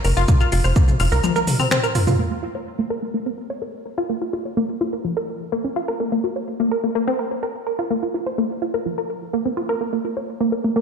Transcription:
0.05 analog synth bass F#1, synth arpeggio sound A#4, open hi-hat, claves, shaker
0.17 analog synth bass F#1, synth arpeggio sound F4, shaker
0.28 synth arpeggio sound A#3, kick, mid tom, shaker
0.40 synth arpeggio sound F4, claves, shaker
0.52 analog synth bass F1, synth arpeggio sound F4, open hi-hat, shaker
0.64 analog synth bass F1, synth arpeggio sound C5, claves, shaker
0.76 synth arpeggio sound A#3, kick, shaker
0.88 mid tom, shaker
1.00 analog synth bass F1, synth arpeggio sound F4, open hi-hat, claves, shaker
1.12 analog synth bass C2, synth arpeggio sound A#4, shaker
1.24 synth arpeggio sound F3, high tom, claves, shaker
1.36 synth arpeggio sound A#4, high tom, shaker
1.47 open hi-hat, mid tom, shaker
1.60 synth arpeggio sound C4, mid tom, claves, shaker
1.71 synth arpeggio sound C4, finger snap, mid tom, shaker
1.83 synth arpeggio sound A#4, claves, shaker
1.95 synth arpeggio sound F4, mid tom, open hi-hat, shaker
2.07 synth arpeggio sound F4, mid tom, shaker
2.19 synth arpeggio sound A#3
2.31 synth arpeggio sound A#3
2.43 synth arpeggio sound F4
2.55 synth arpeggio sound C#5
2.79 synth arpeggio sound A#3
2.90 synth arpeggio sound A#4
3.02 synth arpeggio sound A#3
3.14 synth arpeggio sound A#3
3.26 synth arpeggio sound C4
3.38 synth arpeggio sound A#4
3.50 synth arpeggio sound C#5
3.62 synth arpeggio sound A#4
3.86 synth arpeggio sound A#4
3.98 synth arpeggio sound F4
4.09 synth arpeggio sound A#3
4.22 synth arpeggio sound F4
4.33 synth arpeggio sound F4
4.45 synth arpeggio sound C#5
4.57 synth arpeggio sound A#3
4.81 synth arpeggio sound F4
4.93 synth arpeggio sound A#4
5.05 synth arpeggio sound F3
5.17 synth arpeggio sound A#4
5.52 synth arpeggio sound A#3
5.64 synth arpeggio sound C#4
5.76 synth arpeggio sound F4
5.88 synth arpeggio sound A#4
6.00 synth arpeggio sound A#3
6.12 synth arpeggio sound A#3
6.24 synth arpeggio sound F#4
6.36 synth arpeggio sound C#5
6.60 synth arpeggio sound A#3
6.71 synth arpeggio sound A#4
6.84 synth arpeggio sound A#3
6.95 synth arpeggio sound A#3
7.07 synth arpeggio sound C4
7.19 synth arpeggio sound A#4
7.31 synth arpeggio sound C#5
7.43 synth arpeggio sound A#4
7.67 synth arpeggio sound A#4
7.79 synth arpeggio sound F4
7.91 synth arpeggio sound A#3
8.03 synth arpeggio sound F4
8.14 synth arpeggio sound F4
8.26 synth arpeggio sound C5
8.38 synth arpeggio sound A#3
8.62 synth arpeggio sound F4
8.74 synth arpeggio sound A#4
8.86 synth arpeggio sound F3
8.98 synth arpeggio sound A#4
9.33 synth arpeggio sound A#3
9.45 synth arpeggio sound C4
9.57 synth arpeggio sound F4
9.69 synth arpeggio sound A#4
9.81 synth arpeggio sound A#3
9.93 synth arpeggio sound A#3
10.05 synth arpeggio sound F4
10.17 synth arpeggio sound C#5
10.41 synth arpeggio sound A#3
10.52 synth arpeggio sound A#4
10.64 synth arpeggio sound A#3
10.76 synth arpeggio sound A#3

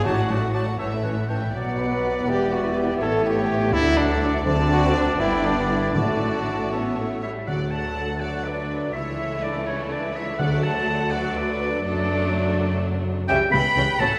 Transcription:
0.03 double bass section A1, cello section A2, timpani A2, viola section F#3, bassoon F#3, clarinet A3, violin section D4 A5, trumpet F#4, french horn section F#4, oboe D5, flute A5
0.16 viola section A3, violin section F#4 F#5
0.28 viola section F#3, bassoon F#3, clarinet A3, violin section D4 A5, oboe D5, flute A5
0.40 viola section A3, violin section F#4 F#5
0.53 viola section F#3, bassoon F#3, clarinet A3, violin section D4 A5, oboe D5, flute A5
0.65 viola section A3, violin section F#4 F#5
0.78 double bass section A1, cello section A2, viola section E3, bassoon E3, clarinet A3, violin section C#4 C#5, oboe E5, flute A5
0.91 viola section A3, violin section E4 E5
1.02 viola section E3, bassoon E3, clarinet A3, violin section C#4 C#5, oboe F#5, flute A5
1.15 viola section A3, violin section E4 E5
1.29 viola section E3, bassoon E3, clarinet A3, violin section C#4 C#5, oboe G5, flute A5
1.40 viola section A3, violin section E4 E5
1.53 double bass section B1, cello section B2, viola section F#3, bassoon F#3, clarinet B3, violin section B3 D5, oboe D5, flute F#5
1.79 trumpet B4, french horn section B4
2.27 double bass section E1, cello section E2, viola section E3, bassoon G3, french horn section G4, trumpet G4, flute E5
2.52 trumpet F#4, french horn section F#4
2.77 trumpet G4, french horn section G4
3.00 double bass section A1, cello section A2, bassoon A3, trumpet A4, french horn section A4, violin section C#5, oboe C#5
3.25 trumpet G4, french horn section G4
3.72 cello section D2, double bass section D2, viola section F#3, violin section A3 D5, clarinet D4, trumpet E4, french horn section E4, oboe D5, flute F#5
3.97 trumpet D4, french horn section D4
4.45 cello section D2, double bass section D2, viola section D3, timpani D3, bassoon C4, violin section C4 D5, flute A5
4.70 trumpet F#4, french horn section F#4
4.94 trumpet D4, french horn section D4
5.18 double bass section G1, cello section G2, viola section D3, bassoon B3, violin section B3 D5, french horn section E4, trumpet E4, flute G5
5.44 french horn section D4, trumpet D4
5.70 trumpet E4, french horn section E4
5.95 double bass section A1, timpani A2, cello section A2, viola section D3, violin section A3 D5, bassoon A3, trumpet F#4, french horn section F#4, flute A5
6.72 violin section A3 C#5, viola section B3, clarinet C#4, oboe E5
6.99 viola section A3
7.22 viola section G3, trumpet E4, french horn section E4, violin section C#5, flute E5, clarinet E5, oboe E5
7.47 double bass section D2, cello section D2, timpani D3, viola section F#3, violin section A3 D4 D5, trumpet F#4, french horn section F#4, clarinet F#5, flute F#5, oboe F#5
7.71 trumpet A4, violin section F#5, clarinet A5, flute A5, oboe A5
7.75 french horn section A4
8.20 viola section F#3, violin section A3 D4 D5, trumpet F#4, french horn section F#4, clarinet F#5, flute F#5, oboe F#5
8.44 trumpet D4, french horn section D4, violin section B4, clarinet D5, flute D5, oboe D5
8.93 cello section C#2, double bass section C#2, viola section E3 A3, violin section A3 E4 C#5, trumpet E4, french horn section E4, clarinet E5, flute E5, oboe E5
9.42 trumpet D4, french horn section D4, violin section B4, clarinet D5, flute D5, oboe D5
9.65 french horn section C#4, trumpet C#4, violin section A4, clarinet C#5, flute C#5, oboe C#5
9.90 french horn section D4, trumpet D4, violin section B4, flute D5, clarinet D5, oboe D5
10.14 trumpet E4, french horn section E4, violin section C#5, flute E5, clarinet E5, oboe E5
10.38 cello section D2, double bass section D2, timpani D3, viola section F#3 A3, violin section A3 D4 D5, trumpet F#4, french horn section F#4, clarinet F#5, flute F#5, oboe F#5
10.63 trumpet A4, french horn section A4, violin section F#5, clarinet A5, flute A5, oboe A5
11.10 violin section A3 D4 D5, french horn section F#4, trumpet F#4, clarinet F#5, oboe F#5, flute F#5
11.14 viola section F#3 A3
11.35 french horn section D4, trumpet D4, violin section B4, clarinet D5, flute D5, oboe D5
11.84 double bass section F#1, cello section F#2, viola section F#3 A3, violin section A3 D4 A4, trumpet D4, french horn section D4, clarinet D5, flute D5, oboe D5
13.28 double bass section C#2, cello section C#3, viola section E3 G3, violin section C#4 E5, trumpet G4, french horn section G4, flute G5, oboe G5, clarinet G5
13.51 double bass section C#2, cello section C#3, viola section E3 G3, violin section C#4 G5, trumpet B4, french horn section B4, flute B5, clarinet B5, oboe B5
13.76 double bass section C#2, cello section C#3, viola section E3 G3, violin section C#4
13.99 double bass section A1, cello section A2, viola section F#3 A3, violin section C#4 F#5, trumpet A4, french horn section A4, clarinet A5, flute A5, oboe A5

